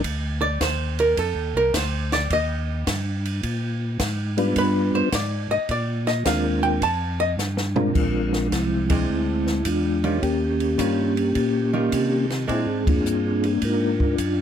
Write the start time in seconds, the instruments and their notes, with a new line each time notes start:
0.04 tonewheel organ D2, kick, ride
0.41 hollow-body jazz guitar D5
0.61 tonewheel organ D#2, hollow-body jazz guitar C5, kick, snare, hi-hat pedal, ride
0.99 hollow-body jazz guitar A#4, ride
1.17 tonewheel organ F2, hollow-body jazz guitar A4, kick, ride
1.34 tonewheel organ D#2
1.54 tonewheel organ C2, hollow-body jazz guitar A#4
1.74 tonewheel organ D2, hollow-body jazz guitar C5, kick, snare, hi-hat pedal, ride
2.12 hollow-body jazz guitar D5, snare, ride
2.30 tonewheel organ D#2, hollow-body jazz guitar D#5, kick, ride
2.87 tonewheel organ G2, kick, snare, hi-hat pedal, ride
3.25 ride
3.43 tonewheel organ A#2, kick, ride
3.99 tonewheel organ G#2, kick, snare, hi-hat pedal, ride
4.37 tonewheel organ G3 B3 D4 F4 B4, ride
4.56 tonewheel organ G2, hollow-body jazz guitar B4, kick, ride
4.94 tonewheel organ G2, hollow-body jazz guitar C5
5.12 tonewheel organ G#2, hollow-body jazz guitar D5, kick, snare, hi-hat pedal, ride
5.49 tonewheel organ G#2, hollow-body jazz guitar D#5
5.69 tonewheel organ A#2, hollow-body jazz guitar D5, kick, ride
6.07 hollow-body jazz guitar D#5, snare
6.25 tonewheel organ D#2 G#3 C4 D4 F4 A#4, hollow-body jazz guitar F5, kick, snare, hi-hat pedal, ride
6.63 hollow-body jazz guitar G5
6.81 tonewheel organ F2, hollow-body jazz guitar A5, kick, ride
7.20 hollow-body jazz guitar D#5
7.37 tonewheel organ G2, snare, hi-hat pedal
7.57 snare
7.76 tonewheel organ G#3 C4 D4 F4 A#4, floor tom
7.94 tonewheel organ A#1 F3 G#3 D4, kick, crash
8.33 snare
8.52 tonewheel organ C2 G#3 C4 E4, kick, snare, hi-hat pedal, ride
8.90 hollow-body jazz guitar G#3 C4 D4, kick, ride
9.09 tonewheel organ D2, kick
9.47 snare
9.65 tonewheel organ E2 G#3 D4 F4, kick, hi-hat pedal, ride
10.04 hollow-body jazz guitar D#3 G3 C#4 F4, ride
10.22 tonewheel organ D#2 A#3 C#4 G4, kick, ride
10.60 ride
10.78 tonewheel organ G2, hollow-body jazz guitar D#3 G3 C#4 F4, kick, hi-hat pedal, ride
11.17 ride
11.35 tonewheel organ A#2, kick, ride
11.73 hollow-body jazz guitar D#3 G3 F4
11.92 tonewheel organ C3, kick, hi-hat pedal, ride
12.30 snare, ride
12.48 tonewheel organ A#2 C4 E4 G#4, hollow-body jazz guitar G#3 C4 D4, kick, ride
12.66 tonewheel organ G#2
12.85 tonewheel organ F2 A#3 D4, kick, ride
12.89 tonewheel organ F4
13.03 tonewheel organ G2, hi-hat pedal
13.44 tonewheel organ G#4, ride
13.61 tonewheel organ G#2 A#4, kick, ride
13.65 tonewheel organ D4 F4
14.00 kick
14.18 tonewheel organ F#2, kick, hi-hat pedal, ride